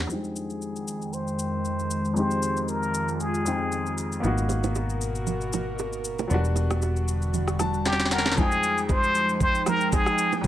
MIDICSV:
0, 0, Header, 1, 6, 480
1, 0, Start_track
1, 0, Tempo, 517241
1, 92, Time_signature, 4, 2, 24, 8
1, 9718, End_track
2, 0, Start_track
2, 0, Title_t, "Muted trumpet"
2, 0, Program_c, 0, 59
2, 98, Note_on_c, 0, 68, 94
2, 1051, Note_on_c, 0, 72, 109
2, 1065, Note_off_c, 0, 68, 0
2, 2008, Note_off_c, 0, 72, 0
2, 2013, Note_on_c, 0, 72, 108
2, 2493, Note_on_c, 0, 70, 96
2, 2507, Note_off_c, 0, 72, 0
2, 2971, Note_on_c, 0, 68, 80
2, 2984, Note_off_c, 0, 70, 0
2, 3691, Note_off_c, 0, 68, 0
2, 7299, Note_on_c, 0, 67, 88
2, 7535, Note_on_c, 0, 70, 94
2, 7549, Note_off_c, 0, 67, 0
2, 7777, Note_on_c, 0, 68, 102
2, 7791, Note_off_c, 0, 70, 0
2, 8259, Note_on_c, 0, 72, 108
2, 8273, Note_off_c, 0, 68, 0
2, 8733, Note_off_c, 0, 72, 0
2, 8738, Note_on_c, 0, 72, 107
2, 8980, Note_on_c, 0, 70, 96
2, 8994, Note_off_c, 0, 72, 0
2, 9217, Note_on_c, 0, 68, 94
2, 9231, Note_off_c, 0, 70, 0
2, 9695, Note_off_c, 0, 68, 0
2, 9718, End_track
3, 0, Start_track
3, 0, Title_t, "Grand piano"
3, 0, Program_c, 1, 0
3, 63, Note_on_c, 1, 41, 59
3, 78, Note_on_c, 1, 55, 43
3, 93, Note_on_c, 1, 60, 56
3, 109, Note_on_c, 1, 63, 57
3, 124, Note_on_c, 1, 79, 69
3, 136, Note_on_c, 1, 56, 54
3, 148, Note_off_c, 1, 55, 0
3, 275, Control_c, 1, 64, 127
3, 1960, Note_off_c, 1, 41, 0
3, 1975, Note_off_c, 1, 60, 0
3, 1981, Note_on_c, 1, 41, 61
3, 1983, Note_off_c, 1, 56, 0
3, 1983, Note_off_c, 1, 63, 0
3, 1991, Note_off_c, 1, 79, 0
3, 1997, Note_on_c, 1, 56, 56
3, 2013, Note_on_c, 1, 60, 53
3, 2028, Note_on_c, 1, 63, 53
3, 2044, Note_on_c, 1, 67, 68
3, 3172, Note_off_c, 1, 41, 0
3, 3180, Note_off_c, 1, 56, 0
3, 3189, Note_off_c, 1, 60, 0
3, 3196, Note_off_c, 1, 63, 0
3, 3199, Note_on_c, 1, 41, 50
3, 3204, Note_off_c, 1, 67, 0
3, 3206, Note_on_c, 1, 56, 46
3, 3213, Note_on_c, 1, 60, 44
3, 3221, Note_on_c, 1, 63, 45
3, 3229, Note_on_c, 1, 79, 53
3, 3900, Note_on_c, 1, 58, 69
3, 3920, Note_on_c, 1, 59, 67
3, 3926, Note_off_c, 1, 41, 0
3, 3927, Note_off_c, 1, 63, 0
3, 3929, Note_off_c, 1, 56, 0
3, 3933, Note_off_c, 1, 60, 0
3, 3940, Note_off_c, 1, 79, 0
3, 3941, Note_on_c, 1, 63, 66
3, 3944, Control_c, 1, 64, 0
3, 3962, Note_on_c, 1, 66, 81
3, 4127, Control_c, 1, 64, 127
3, 5799, Note_off_c, 1, 58, 0
3, 5809, Note_off_c, 1, 59, 0
3, 5819, Note_off_c, 1, 63, 0
3, 5824, Note_on_c, 1, 54, 59
3, 5830, Note_off_c, 1, 66, 0
3, 5843, Note_on_c, 1, 59, 65
3, 5862, Control_c, 1, 64, 0
3, 5863, Note_on_c, 1, 62, 68
3, 5880, Note_on_c, 1, 55, 71
3, 5885, Note_on_c, 1, 66, 79
3, 5901, Note_off_c, 1, 54, 0
3, 6044, Control_c, 1, 64, 127
3, 7055, Note_on_c, 1, 81, 72
3, 7277, Note_off_c, 1, 81, 0
3, 7295, Note_on_c, 1, 79, 70
3, 7517, Note_off_c, 1, 79, 0
3, 7536, Note_on_c, 1, 78, 71
3, 7730, Note_off_c, 1, 59, 0
3, 7740, Note_off_c, 1, 62, 0
3, 7744, Note_on_c, 1, 41, 64
3, 7749, Note_off_c, 1, 55, 0
3, 7751, Note_off_c, 1, 66, 0
3, 7757, Note_off_c, 1, 78, 0
3, 7760, Note_on_c, 1, 56, 56
3, 7775, Note_on_c, 1, 60, 56
3, 7785, Control_c, 1, 64, 0
3, 7790, Note_on_c, 1, 63, 56
3, 7805, Note_on_c, 1, 79, 71
3, 7949, Control_c, 1, 64, 127
3, 9641, Note_off_c, 1, 41, 0
3, 9649, Note_off_c, 1, 56, 0
3, 9656, Note_off_c, 1, 60, 0
3, 9663, Note_on_c, 1, 41, 64
3, 9664, Note_off_c, 1, 63, 0
3, 9672, Note_off_c, 1, 79, 0
3, 9678, Note_on_c, 1, 56, 61
3, 9718, Note_off_c, 1, 41, 0
3, 9718, Note_off_c, 1, 56, 0
3, 9718, End_track
4, 0, Start_track
4, 0, Title_t, "Analog synth pad"
4, 0, Program_c, 2, 89
4, 87, Note_on_c, 2, 56, 74
4, 89, Note_on_c, 2, 41, 80
4, 89, Note_on_c, 2, 51, 75
4, 89, Note_on_c, 2, 79, 87
4, 1991, Note_off_c, 2, 79, 0
4, 2008, Note_on_c, 2, 65, 92
4, 3892, Note_off_c, 2, 56, 0
4, 3893, Note_off_c, 2, 41, 0
4, 3893, Note_off_c, 2, 51, 0
4, 3911, Note_off_c, 2, 65, 0
4, 3934, Note_on_c, 2, 66, 94
4, 3935, Note_on_c, 2, 47, 80
4, 3936, Note_on_c, 2, 70, 73
4, 5834, Note_off_c, 2, 47, 0
4, 5834, Note_off_c, 2, 66, 0
4, 5835, Note_off_c, 2, 70, 0
4, 5852, Note_on_c, 2, 66, 91
4, 5853, Note_on_c, 2, 50, 79
4, 5854, Note_on_c, 2, 55, 72
4, 7753, Note_off_c, 2, 50, 0
4, 7753, Note_off_c, 2, 66, 0
4, 7754, Note_off_c, 2, 55, 0
4, 7769, Note_on_c, 2, 79, 93
4, 7770, Note_on_c, 2, 56, 81
4, 7771, Note_on_c, 2, 53, 83
4, 7771, Note_on_c, 2, 63, 73
4, 9718, Note_off_c, 2, 53, 0
4, 9718, Note_off_c, 2, 56, 0
4, 9718, Note_off_c, 2, 63, 0
4, 9718, Note_off_c, 2, 79, 0
4, 9718, End_track
5, 0, Start_track
5, 0, Title_t, "Fingered electric bass"
5, 0, Program_c, 3, 33
5, 3932, Note_on_c, 3, 32, 82
5, 5815, Note_off_c, 3, 32, 0
5, 5852, Note_on_c, 3, 28, 83
5, 7735, Note_off_c, 3, 28, 0
5, 9718, End_track
6, 0, Start_track
6, 0, Title_t, "Drums"
6, 91, Note_on_c, 9, 82, 73
6, 183, Note_off_c, 9, 82, 0
6, 223, Note_on_c, 9, 82, 57
6, 316, Note_off_c, 9, 82, 0
6, 333, Note_on_c, 9, 82, 85
6, 425, Note_off_c, 9, 82, 0
6, 463, Note_on_c, 9, 82, 50
6, 556, Note_off_c, 9, 82, 0
6, 572, Note_on_c, 9, 82, 74
6, 664, Note_off_c, 9, 82, 0
6, 705, Note_on_c, 9, 82, 53
6, 798, Note_off_c, 9, 82, 0
6, 812, Note_on_c, 9, 82, 96
6, 905, Note_off_c, 9, 82, 0
6, 943, Note_on_c, 9, 82, 56
6, 1036, Note_off_c, 9, 82, 0
6, 1050, Note_on_c, 9, 82, 78
6, 1143, Note_off_c, 9, 82, 0
6, 1183, Note_on_c, 9, 82, 54
6, 1275, Note_off_c, 9, 82, 0
6, 1288, Note_on_c, 9, 82, 99
6, 1381, Note_off_c, 9, 82, 0
6, 1529, Note_on_c, 9, 82, 79
6, 1622, Note_off_c, 9, 82, 0
6, 1663, Note_on_c, 9, 82, 51
6, 1756, Note_off_c, 9, 82, 0
6, 1769, Note_on_c, 9, 82, 102
6, 1862, Note_off_c, 9, 82, 0
6, 1901, Note_on_c, 9, 82, 53
6, 1993, Note_off_c, 9, 82, 0
6, 2009, Note_on_c, 9, 82, 73
6, 2102, Note_off_c, 9, 82, 0
6, 2142, Note_on_c, 9, 82, 59
6, 2235, Note_off_c, 9, 82, 0
6, 2250, Note_on_c, 9, 82, 87
6, 2343, Note_off_c, 9, 82, 0
6, 2383, Note_on_c, 9, 82, 52
6, 2476, Note_off_c, 9, 82, 0
6, 2489, Note_on_c, 9, 82, 77
6, 2582, Note_off_c, 9, 82, 0
6, 2624, Note_on_c, 9, 82, 53
6, 2717, Note_off_c, 9, 82, 0
6, 2730, Note_on_c, 9, 82, 97
6, 2823, Note_off_c, 9, 82, 0
6, 2861, Note_on_c, 9, 82, 55
6, 2954, Note_off_c, 9, 82, 0
6, 2971, Note_on_c, 9, 82, 77
6, 3064, Note_off_c, 9, 82, 0
6, 3102, Note_on_c, 9, 82, 54
6, 3195, Note_off_c, 9, 82, 0
6, 3210, Note_on_c, 9, 82, 97
6, 3303, Note_off_c, 9, 82, 0
6, 3451, Note_on_c, 9, 82, 80
6, 3544, Note_off_c, 9, 82, 0
6, 3584, Note_on_c, 9, 82, 50
6, 3677, Note_off_c, 9, 82, 0
6, 3691, Note_on_c, 9, 82, 106
6, 3784, Note_off_c, 9, 82, 0
6, 3825, Note_on_c, 9, 82, 55
6, 3917, Note_off_c, 9, 82, 0
6, 3931, Note_on_c, 9, 64, 64
6, 3931, Note_on_c, 9, 82, 73
6, 4024, Note_off_c, 9, 64, 0
6, 4024, Note_off_c, 9, 82, 0
6, 4062, Note_on_c, 9, 82, 60
6, 4155, Note_off_c, 9, 82, 0
6, 4167, Note_on_c, 9, 60, 48
6, 4167, Note_on_c, 9, 61, 48
6, 4171, Note_on_c, 9, 82, 86
6, 4260, Note_off_c, 9, 60, 0
6, 4260, Note_off_c, 9, 61, 0
6, 4263, Note_off_c, 9, 82, 0
6, 4301, Note_on_c, 9, 82, 52
6, 4305, Note_on_c, 9, 61, 73
6, 4394, Note_off_c, 9, 82, 0
6, 4398, Note_off_c, 9, 61, 0
6, 4408, Note_on_c, 9, 82, 73
6, 4416, Note_on_c, 9, 60, 66
6, 4501, Note_off_c, 9, 82, 0
6, 4509, Note_off_c, 9, 60, 0
6, 4543, Note_on_c, 9, 82, 54
6, 4636, Note_off_c, 9, 82, 0
6, 4651, Note_on_c, 9, 82, 95
6, 4743, Note_off_c, 9, 82, 0
6, 4781, Note_on_c, 9, 82, 56
6, 4873, Note_off_c, 9, 82, 0
6, 4887, Note_on_c, 9, 64, 71
6, 4889, Note_on_c, 9, 82, 77
6, 4980, Note_off_c, 9, 64, 0
6, 4981, Note_off_c, 9, 82, 0
6, 5020, Note_on_c, 9, 82, 59
6, 5113, Note_off_c, 9, 82, 0
6, 5130, Note_on_c, 9, 82, 95
6, 5137, Note_on_c, 9, 61, 65
6, 5137, Note_on_c, 9, 64, 65
6, 5222, Note_off_c, 9, 82, 0
6, 5230, Note_off_c, 9, 61, 0
6, 5230, Note_off_c, 9, 64, 0
6, 5369, Note_on_c, 9, 82, 75
6, 5377, Note_on_c, 9, 60, 71
6, 5462, Note_off_c, 9, 82, 0
6, 5470, Note_off_c, 9, 60, 0
6, 5501, Note_on_c, 9, 82, 52
6, 5594, Note_off_c, 9, 82, 0
6, 5609, Note_on_c, 9, 82, 102
6, 5701, Note_off_c, 9, 82, 0
6, 5741, Note_on_c, 9, 82, 53
6, 5746, Note_on_c, 9, 60, 49
6, 5746, Note_on_c, 9, 61, 70
6, 5834, Note_off_c, 9, 82, 0
6, 5839, Note_off_c, 9, 60, 0
6, 5839, Note_off_c, 9, 61, 0
6, 5850, Note_on_c, 9, 82, 75
6, 5854, Note_on_c, 9, 64, 63
6, 5942, Note_off_c, 9, 82, 0
6, 5947, Note_off_c, 9, 64, 0
6, 5981, Note_on_c, 9, 82, 58
6, 6074, Note_off_c, 9, 82, 0
6, 6085, Note_on_c, 9, 60, 50
6, 6085, Note_on_c, 9, 61, 50
6, 6090, Note_on_c, 9, 82, 88
6, 6178, Note_off_c, 9, 60, 0
6, 6178, Note_off_c, 9, 61, 0
6, 6183, Note_off_c, 9, 82, 0
6, 6222, Note_on_c, 9, 61, 71
6, 6223, Note_on_c, 9, 37, 97
6, 6223, Note_on_c, 9, 82, 51
6, 6315, Note_off_c, 9, 61, 0
6, 6316, Note_off_c, 9, 37, 0
6, 6316, Note_off_c, 9, 82, 0
6, 6328, Note_on_c, 9, 82, 78
6, 6336, Note_on_c, 9, 60, 66
6, 6421, Note_off_c, 9, 82, 0
6, 6429, Note_off_c, 9, 60, 0
6, 6462, Note_on_c, 9, 82, 54
6, 6555, Note_off_c, 9, 82, 0
6, 6570, Note_on_c, 9, 82, 94
6, 6663, Note_off_c, 9, 82, 0
6, 6700, Note_on_c, 9, 82, 55
6, 6793, Note_off_c, 9, 82, 0
6, 6809, Note_on_c, 9, 82, 79
6, 6810, Note_on_c, 9, 64, 71
6, 6902, Note_off_c, 9, 82, 0
6, 6903, Note_off_c, 9, 64, 0
6, 6937, Note_on_c, 9, 37, 88
6, 6941, Note_on_c, 9, 82, 57
6, 7030, Note_off_c, 9, 37, 0
6, 7033, Note_off_c, 9, 82, 0
6, 7047, Note_on_c, 9, 37, 86
6, 7048, Note_on_c, 9, 82, 99
6, 7058, Note_on_c, 9, 61, 66
6, 7058, Note_on_c, 9, 64, 66
6, 7140, Note_off_c, 9, 37, 0
6, 7141, Note_off_c, 9, 82, 0
6, 7150, Note_off_c, 9, 61, 0
6, 7150, Note_off_c, 9, 64, 0
6, 7181, Note_on_c, 9, 82, 55
6, 7273, Note_off_c, 9, 82, 0
6, 7289, Note_on_c, 9, 82, 80
6, 7290, Note_on_c, 9, 38, 52
6, 7298, Note_on_c, 9, 60, 71
6, 7355, Note_off_c, 9, 38, 0
6, 7355, Note_on_c, 9, 38, 51
6, 7382, Note_off_c, 9, 82, 0
6, 7391, Note_off_c, 9, 60, 0
6, 7420, Note_off_c, 9, 38, 0
6, 7420, Note_on_c, 9, 38, 64
6, 7421, Note_on_c, 9, 82, 52
6, 7475, Note_off_c, 9, 38, 0
6, 7475, Note_on_c, 9, 38, 60
6, 7514, Note_off_c, 9, 82, 0
6, 7528, Note_off_c, 9, 38, 0
6, 7528, Note_on_c, 9, 38, 79
6, 7528, Note_on_c, 9, 82, 103
6, 7595, Note_off_c, 9, 38, 0
6, 7595, Note_on_c, 9, 38, 71
6, 7621, Note_off_c, 9, 82, 0
6, 7662, Note_on_c, 9, 60, 51
6, 7662, Note_on_c, 9, 61, 73
6, 7663, Note_off_c, 9, 38, 0
6, 7663, Note_on_c, 9, 38, 92
6, 7663, Note_on_c, 9, 82, 54
6, 7717, Note_off_c, 9, 38, 0
6, 7717, Note_on_c, 9, 38, 82
6, 7755, Note_off_c, 9, 60, 0
6, 7755, Note_off_c, 9, 61, 0
6, 7755, Note_off_c, 9, 82, 0
6, 7770, Note_on_c, 9, 82, 77
6, 7771, Note_on_c, 9, 36, 123
6, 7773, Note_on_c, 9, 64, 62
6, 7810, Note_off_c, 9, 38, 0
6, 7863, Note_off_c, 9, 82, 0
6, 7864, Note_off_c, 9, 36, 0
6, 7866, Note_off_c, 9, 64, 0
6, 7903, Note_on_c, 9, 82, 62
6, 7996, Note_off_c, 9, 82, 0
6, 8012, Note_on_c, 9, 82, 94
6, 8104, Note_off_c, 9, 82, 0
6, 8145, Note_on_c, 9, 82, 54
6, 8238, Note_off_c, 9, 82, 0
6, 8250, Note_on_c, 9, 82, 80
6, 8252, Note_on_c, 9, 36, 98
6, 8256, Note_on_c, 9, 60, 69
6, 8343, Note_off_c, 9, 82, 0
6, 8345, Note_off_c, 9, 36, 0
6, 8349, Note_off_c, 9, 60, 0
6, 8384, Note_on_c, 9, 82, 54
6, 8477, Note_off_c, 9, 82, 0
6, 8490, Note_on_c, 9, 82, 100
6, 8583, Note_off_c, 9, 82, 0
6, 8621, Note_on_c, 9, 82, 60
6, 8713, Note_off_c, 9, 82, 0
6, 8727, Note_on_c, 9, 36, 115
6, 8728, Note_on_c, 9, 82, 84
6, 8729, Note_on_c, 9, 64, 77
6, 8820, Note_off_c, 9, 36, 0
6, 8821, Note_off_c, 9, 82, 0
6, 8822, Note_off_c, 9, 64, 0
6, 8861, Note_on_c, 9, 82, 58
6, 8953, Note_off_c, 9, 82, 0
6, 8967, Note_on_c, 9, 37, 88
6, 8968, Note_on_c, 9, 82, 105
6, 8976, Note_on_c, 9, 61, 72
6, 8976, Note_on_c, 9, 64, 69
6, 9060, Note_off_c, 9, 37, 0
6, 9061, Note_off_c, 9, 82, 0
6, 9069, Note_off_c, 9, 61, 0
6, 9069, Note_off_c, 9, 64, 0
6, 9101, Note_on_c, 9, 82, 57
6, 9193, Note_off_c, 9, 82, 0
6, 9208, Note_on_c, 9, 82, 82
6, 9210, Note_on_c, 9, 36, 100
6, 9215, Note_on_c, 9, 60, 74
6, 9301, Note_off_c, 9, 82, 0
6, 9303, Note_off_c, 9, 36, 0
6, 9308, Note_off_c, 9, 60, 0
6, 9339, Note_on_c, 9, 37, 93
6, 9341, Note_on_c, 9, 82, 54
6, 9432, Note_off_c, 9, 37, 0
6, 9434, Note_off_c, 9, 82, 0
6, 9449, Note_on_c, 9, 82, 107
6, 9542, Note_off_c, 9, 82, 0
6, 9580, Note_on_c, 9, 82, 58
6, 9583, Note_on_c, 9, 60, 51
6, 9583, Note_on_c, 9, 61, 73
6, 9673, Note_off_c, 9, 82, 0
6, 9676, Note_off_c, 9, 60, 0
6, 9676, Note_off_c, 9, 61, 0
6, 9688, Note_on_c, 9, 82, 77
6, 9690, Note_on_c, 9, 36, 127
6, 9718, Note_off_c, 9, 36, 0
6, 9718, Note_off_c, 9, 82, 0
6, 9718, End_track
0, 0, End_of_file